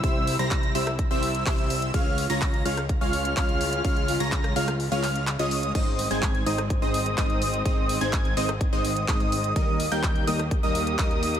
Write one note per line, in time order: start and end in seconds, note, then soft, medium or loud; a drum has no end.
0.00 0.37 C2 loud
0.00 1.90 C3 medium
0.00 1.90 G3 medium
0.00 0.36 G3 medium
0.00 0.36 C4 medium
0.00 1.90 E4 medium
0.00 0.36 E4 medium
0.00 0.36 C5 medium
0.00 0.36 E5 loud
0.00 0.36 E6 loud
0.00 kick loud
0.00 closed hi-hat medium
0.27 open hi-hat loud
0.39 0.73 C2 medium
0.39 0.72 G3 medium
0.39 0.72 C4 medium
0.39 0.72 E4 medium
0.39 0.72 C5 medium
0.39 0.72 A#5 loud
0.39 0.72 A#6 loud
0.39 closed hi-hat medium
0.51 kick loud
0.51 clap loud
0.51 closed hi-hat medium
0.63 closed hi-hat soft
0.75 1.08 C2 loud
0.75 0.88 G3 loud
0.75 0.88 C4 medium
0.75 0.88 E4 medium
0.75 0.88 C5 medium
0.75 0.88 E5 loud
0.75 0.88 E6 loud
0.75 open hi-hat loud
0.87 cross-stick medium
0.87 closed hi-hat medium
0.99 kick loud
0.99 closed hi-hat medium
1.11 1.44 C2 loud
1.11 1.44 G3 medium
1.11 1.44 C4 medium
1.11 1.44 E4 medium
1.11 1.44 C5 medium
1.11 1.44 E5 loud
1.11 1.44 E6 loud
1.23 open hi-hat loud
1.35 closed hi-hat medium
1.46 1.92 C2 loud
1.46 1.91 G3 medium
1.46 1.91 C4 medium
1.46 1.91 E4 medium
1.46 1.91 C5 medium
1.46 1.91 E5 loud
1.46 1.91 E6 loud
1.46 kick loud
1.46 clap loud
1.46 closed hi-hat medium
1.58 closed hi-hat soft
1.70 open hi-hat loud
1.82 closed hi-hat medium
1.94 2.27 C#2 loud
1.94 5.71 C#3 medium
1.94 2.27 G#3 medium
1.94 9.52 G#3 medium
1.94 2.27 C#4 medium
1.94 5.71 F4 medium
1.94 2.27 F4 medium
1.94 2.27 C#5 medium
1.94 2.27 F5 loud
1.94 2.27 F6 loud
1.94 kick loud
1.94 closed hi-hat medium
2.18 open hi-hat loud
2.30 2.63 C#2 medium
2.30 2.63 G#3 medium
2.30 2.63 C#4 medium
2.30 2.63 F4 medium
2.30 2.63 C#5 medium
2.30 2.63 A#5 loud
2.30 2.63 A#6 loud
2.30 closed hi-hat medium
2.42 kick loud
2.42 clap loud
2.42 closed hi-hat medium
2.54 closed hi-hat soft
2.65 2.99 C#2 loud
2.65 2.79 G#3 loud
2.65 2.79 C#4 medium
2.65 2.79 F4 loud
2.65 2.79 C#5 medium
2.65 2.79 F5 loud
2.65 2.79 F6 loud
2.65 open hi-hat loud
2.77 cross-stick medium
2.77 closed hi-hat medium
2.89 kick loud
2.89 closed hi-hat medium
3.01 3.35 C#2 loud
3.01 3.34 G#3 medium
3.01 3.34 C#4 medium
3.01 3.34 F4 medium
3.01 3.34 C#5 medium
3.01 3.34 F5 loud
3.01 3.34 F6 loud
3.13 open hi-hat loud
3.25 closed hi-hat medium
3.37 3.82 C#2 loud
3.37 3.82 G#3 medium
3.37 3.82 C#4 medium
3.37 3.82 F4 medium
3.37 3.82 C#5 medium
3.37 3.82 F5 loud
3.37 3.82 F6 loud
3.37 kick loud
3.37 clap loud
3.37 closed hi-hat medium
3.49 closed hi-hat soft
3.61 open hi-hat loud
3.73 closed hi-hat medium
3.85 4.18 C#2 loud
3.85 4.17 G#3 medium
3.85 4.17 C#4 medium
3.85 4.17 F4 medium
3.85 4.17 C#5 medium
3.85 4.17 F5 loud
3.85 4.17 F6 loud
3.85 kick loud
3.85 closed hi-hat medium
3.96 closed hi-hat soft
4.08 open hi-hat loud
4.20 4.54 C#2 medium
4.20 4.53 G#3 medium
4.20 4.53 C#4 medium
4.20 4.53 F4 medium
4.20 4.53 C#5 medium
4.20 4.53 A#5 loud
4.20 4.53 A#6 loud
4.20 closed hi-hat medium
4.32 kick loud
4.32 clap loud
4.32 closed hi-hat medium
4.44 cross-stick medium
4.44 closed hi-hat soft
4.56 4.89 C#2 loud
4.56 4.69 G#3 loud
4.56 4.69 C#4 medium
4.56 4.69 F4 medium
4.56 4.69 C#5 medium
4.56 4.69 F5 loud
4.56 4.69 F6 loud
4.56 open hi-hat loud
4.68 cross-stick medium
4.68 closed hi-hat medium
4.80 open hi-hat medium
4.92 5.37 C#2 loud
4.92 5.25 G#3 medium
4.92 5.25 C#4 medium
4.92 5.25 F4 medium
4.92 5.25 C#5 medium
4.92 5.25 F5 loud
4.92 5.25 F6 medium
4.92 closed hi-hat soft
5.03 clap medium
5.03 open hi-hat loud
5.16 closed hi-hat medium
5.27 clap loud
5.27 closed hi-hat medium
5.39 5.73 C#2 medium
5.39 5.72 G#3 loud
5.39 5.72 C#4 medium
5.39 5.72 F4 medium
5.39 5.72 C#5 medium
5.39 5.72 D#5 loud
5.39 5.72 D#6 loud
5.39 closed hi-hat soft
5.51 open hi-hat loud
5.63 closed hi-hat medium
5.75 6.08 G#1 loud
5.75 11.40 D#3 medium
5.75 6.08 G#3 medium
5.75 6.08 C4 medium
5.75 9.52 C4 medium
5.75 6.08 D#4 medium
5.75 6.08 C5 medium
5.75 6.08 D#5 loud
5.75 6.08 D#6 medium
5.75 kick loud
5.75 closed hi-hat medium
5.75 crash medium
5.99 open hi-hat loud
6.11 6.44 G#1 medium
6.11 6.44 G#3 medium
6.11 6.44 C4 medium
6.11 6.44 D#4 medium
6.11 6.44 C5 medium
6.11 6.44 G#5 loud
6.11 6.44 G#6 loud
6.11 closed hi-hat medium
6.22 kick loud
6.22 clap loud
6.22 closed hi-hat medium
6.35 closed hi-hat soft
6.46 6.80 G#1 loud
6.46 6.60 G#3 loud
6.46 6.60 C4 medium
6.46 6.60 D#4 medium
6.46 6.60 C5 medium
6.46 6.60 D#5 loud
6.46 6.60 D#6 loud
6.46 open hi-hat loud
6.58 cross-stick medium
6.58 closed hi-hat medium
6.70 kick loud
6.70 closed hi-hat medium
6.82 7.15 G#1 medium
6.82 7.15 G#3 medium
6.82 7.15 C4 medium
6.82 7.15 D#4 medium
6.82 7.15 C5 medium
6.82 7.15 D#5 loud
6.82 7.15 D#6 loud
6.94 open hi-hat loud
7.06 closed hi-hat medium
7.18 7.63 G#1 loud
7.18 7.63 G#3 medium
7.18 7.63 C4 medium
7.18 7.63 D#4 medium
7.18 7.63 C5 medium
7.18 7.63 D#5 loud
7.18 7.63 D#6 loud
7.18 kick loud
7.18 clap loud
7.18 closed hi-hat medium
7.30 closed hi-hat soft
7.42 open hi-hat loud
7.54 closed hi-hat medium
7.65 7.99 G#1 loud
7.65 7.98 G#3 medium
7.65 7.98 C4 medium
7.65 7.98 D#4 medium
7.65 7.98 C5 medium
7.65 7.98 D#5 loud
7.65 7.98 D#6 medium
7.65 kick loud
7.65 closed hi-hat medium
7.89 open hi-hat loud
8.01 8.35 G#1 loud
8.01 8.34 G#3 medium
8.01 8.34 C4 medium
8.01 8.34 D#4 medium
8.01 8.34 C5 medium
8.01 8.34 G#5 loud
8.01 8.34 G#6 loud
8.01 closed hi-hat medium
8.13 kick loud
8.13 clap loud
8.13 closed hi-hat medium
8.25 closed hi-hat soft
8.37 8.70 G#1 loud
8.37 8.50 G#3 loud
8.37 8.50 C4 medium
8.37 8.50 D#4 medium
8.37 8.50 C5 medium
8.37 8.50 D#5 loud
8.37 8.50 D#6 loud
8.37 open hi-hat loud
8.49 cross-stick medium
8.49 closed hi-hat medium
8.61 kick loud
8.61 closed hi-hat medium
8.73 9.06 G#1 loud
8.73 9.06 G#3 medium
8.73 9.06 C4 medium
8.73 9.06 D#4 medium
8.73 9.06 C5 medium
8.73 9.05 D#5 loud
8.73 9.05 D#6 loud
8.85 open hi-hat loud
8.96 closed hi-hat medium
9.08 9.54 G#1 medium
9.08 9.53 G#3 medium
9.08 9.53 C4 medium
9.08 9.53 D#4 medium
9.08 9.53 C5 medium
9.08 9.53 D#5 loud
9.08 9.53 D#6 loud
9.08 kick loud
9.08 clap loud
9.08 closed hi-hat medium
9.20 closed hi-hat soft
9.32 open hi-hat loud
9.44 closed hi-hat medium
9.56 9.89 D#2 loud
9.56 9.89 G3 medium
9.56 9.89 A#3 medium
9.56 11.40 A#3 medium
9.56 9.89 D#4 medium
9.56 11.40 G4 loud
9.56 9.89 A#4 medium
9.56 9.89 D#5 loud
9.56 9.89 D#6 loud
9.56 kick loud
9.56 closed hi-hat medium
9.80 open hi-hat loud
9.92 10.25 D#2 loud
9.92 10.25 G3 loud
9.92 10.25 A#3 medium
9.92 10.25 D#4 medium
9.92 10.25 A#4 medium
9.92 10.25 G5 loud
9.92 10.25 G6 loud
9.92 closed hi-hat medium
10.03 kick loud
10.03 clap loud
10.03 closed hi-hat medium
10.16 closed hi-hat soft
10.27 10.61 D#2 loud
10.27 10.41 G3 loud
10.27 10.41 A#3 medium
10.27 10.41 D#4 medium
10.27 10.41 A#4 medium
10.27 10.41 D#5 loud
10.27 10.41 D#6 loud
10.27 open hi-hat loud
10.39 cross-stick medium
10.39 closed hi-hat medium
10.51 kick loud
10.51 closed hi-hat medium
10.63 10.96 D#2 loud
10.63 10.96 G3 medium
10.63 10.96 A#3 medium
10.63 10.96 D#4 medium
10.63 10.96 A#4 medium
10.63 10.96 D#5 loud
10.63 10.96 D#6 loud
10.75 open hi-hat loud
10.87 closed hi-hat medium
10.99 11.40 D#2 loud
10.99 11.40 G3 medium
10.99 11.40 A#3 medium
10.99 11.40 D#4 medium
10.99 11.40 A#4 medium
10.99 11.40 D#5 loud
10.99 11.40 D#6 loud
10.99 kick loud
10.99 clap loud
10.99 closed hi-hat medium
11.11 closed hi-hat soft
11.23 open hi-hat loud
11.35 closed hi-hat medium